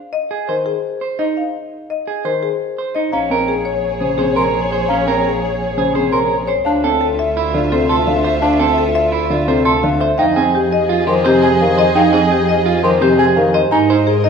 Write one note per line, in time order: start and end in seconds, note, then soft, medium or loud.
0.13 0.36 D#5 medium
0.31 0.54 G#4 medium
0.48 0.71 D#3 soft
0.48 0.71 C5 medium
0.66 0.89 G#4 medium
1.01 1.24 C5 soft
1.19 1.42 D#4 medium
1.19 1.42 D#5 medium
1.37 1.60 F5 medium
1.90 2.13 D#5 medium
2.07 2.30 G#4 medium
2.24 2.48 D#3 soft
2.24 2.48 C5 medium
2.24 2.48 C5 soft
2.43 2.65 G#4 medium
2.78 3.01 C5 soft
2.95 3.13 D#4 soft
2.95 3.18 D#5 medium
3.12 6.55 A#1 medium
3.12 3.36 C#4 medium
3.12 6.44 G#4 medium
3.12 6.44 C#5 medium
3.12 3.36 F5 medium
3.12 3.19 A#5 medium
3.30 3.53 C4 medium
3.30 3.54 A#4 medium
3.48 3.71 G#4 medium
3.65 3.89 C#5 medium
4.01 4.24 C#3 medium
4.01 4.24 G#4 soft
4.01 4.24 C5 medium
4.18 4.42 C3 medium
4.18 4.42 G#4 medium
4.18 4.36 C5 medium
4.36 4.59 A#4 medium
4.36 4.43 C6 medium
4.71 4.95 C5 medium
4.71 4.94 C#5 medium
4.88 5.13 C#4 medium
4.88 5.12 F5 medium
4.88 4.96 A#5 medium
5.07 5.30 C4 soft
5.07 5.30 A#4 medium
5.24 5.48 G#4 medium
5.42 5.65 C#5 medium
5.77 6.01 C#3 medium
5.77 5.95 G#4 medium
5.77 6.01 C5 medium
5.95 6.19 C3 medium
5.95 6.18 G#4 medium
5.95 6.12 C5 medium
6.12 6.36 A#4 medium
6.12 6.19 C6 medium
6.47 6.71 C5 medium
6.47 6.71 C#5 medium
6.65 10.08 D2 medium
6.65 6.89 D4 medium
6.65 9.98 F4 medium
6.65 9.98 E5 medium
6.65 6.89 F5 medium
6.65 6.72 A5 medium
6.84 7.07 C4 medium
6.84 7.07 A4 medium
7.01 7.24 A4 medium
7.19 7.42 E5 medium
7.37 7.60 E4 medium
7.54 7.77 D3 medium
7.54 7.77 F4 medium
7.54 7.77 D5 medium
7.72 7.95 C3 medium
7.72 7.95 A4 medium
7.72 7.89 C5 medium
7.89 8.12 A4 medium
7.89 7.96 C6 medium
8.07 8.30 D3 medium
8.07 8.30 F5 medium
8.24 8.48 C5 medium
8.24 8.48 E5 medium
8.42 8.65 D4 medium
8.42 8.65 F5 medium
8.42 8.48 A5 medium
8.59 8.83 C4 medium
8.59 8.83 A4 medium
8.78 9.01 A4 medium
8.95 9.18 E5 medium
9.12 9.36 E4 medium
9.30 9.53 D3 medium
9.30 9.54 F4 medium
9.30 9.54 D5 medium
9.47 9.71 C3 medium
9.47 9.71 A4 medium
9.47 9.65 C5 medium
9.65 9.89 A4 medium
9.65 9.72 C6 medium
9.83 10.07 D3 medium
9.83 10.06 F5 medium
10.01 10.24 C5 medium
10.01 10.24 E5 medium
10.18 13.61 F2 medium
10.18 10.42 D#4 loud
10.18 13.50 G#4 medium
10.18 13.50 D#5 medium
10.18 10.42 F5 medium
10.18 10.25 G5 medium
10.36 10.60 C4 medium
10.36 10.59 G#4 medium
10.55 10.77 G4 medium
10.72 10.95 D#5 medium
10.89 11.06 F4 loud
11.07 11.30 D#3 medium
11.07 11.30 G4 medium
11.07 11.31 C5 medium
11.07 11.14 C6 medium
11.24 11.48 C3 medium
11.24 11.48 G4 medium
11.24 11.48 C5 medium
11.42 11.65 G#4 medium
11.42 11.49 G#5 medium
11.61 11.83 D#3 medium
11.61 11.83 F5 medium
11.78 12.01 C5 medium
11.78 12.01 D#5 loud
11.95 12.18 D#4 loud
11.95 12.19 F5 medium
11.95 12.02 G5 medium
12.13 12.36 C4 medium
12.13 12.36 G#4 loud
12.32 12.54 G4 medium
12.49 12.72 D#5 medium
12.66 12.84 F4 loud
12.83 13.06 D#3 medium
12.83 13.07 G4 medium
12.83 13.07 C5 medium
12.83 12.90 C6 medium
13.01 13.24 C3 medium
13.01 13.25 G4 loud
13.01 13.24 C5 medium
13.19 13.42 G#4 medium
13.19 13.25 G#5 medium
13.37 13.60 D#3 medium
13.37 13.60 F5 medium
13.54 13.77 C5 medium
13.54 13.77 D#5 medium
13.71 14.29 G#2 medium
13.71 13.95 D#4 medium
13.71 14.29 A#4 medium
13.71 14.29 D#5 medium
13.71 13.95 G#5 medium
13.71 13.78 A#5 medium
13.90 14.13 D#4 medium
13.90 14.13 C5 medium
14.07 14.29 G#4 medium
14.24 14.29 D#4 medium
14.24 14.29 D#5 loud